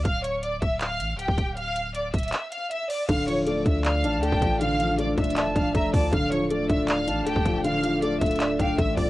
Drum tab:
CC |------------------------------------------------------------------------------------------------|------------------------------------------------------------------------------------------------|x-----------------------------------------------------------------------------------------------|------------------------------------------------------------------------------------------------|
HH |x-----------x-----------x-----------x-----------x-----------x-----------x-----------x-----------|x-----------x-----------x-----------x--x--x--x--x-----------x-----------x-----------o-----------|x-----------x-----------x-----------x-----------x-----------x-----------x-----------x-----------|x-----------x-----------x-----------x---x---x---x-----------x-----------x-----------o-----------|
CP |------------------------------------------------x-----------------------------------------------|------------------------------------------------x-----------------------------------------------|------------------------------------------------x-----------------------------------------------|------------------------------------------------x-----------------------------------------------|
BD |o-----------------------------------o-----------------------------------------o-----o-----------|------------------------------------o-----------------------------------------------------------|o-----------------------------------o-----------------------------------------o-----o-----------|------------------------------------o-----------------------o-----------o-----------o-----------|

CC |------------------------------------------------------------------------------------------------|------------------------------------------------------------------------------------------------|
HH |x-----------x-----------x-----------x-----------x-----------x-----------x-----------x-----------|x-----------x-----------x-----------x--x--x--x--x-----------x-----------x-----------o-----------|
CP |------------------------------------------------x-----------------------------------------------|------------------------------------------------x-----------------------------------------------|
BD |o-----------------------------------o-----------------------------------------o-----o-----------|------------------------------------o-----------------------o-----------o-----------o-----------|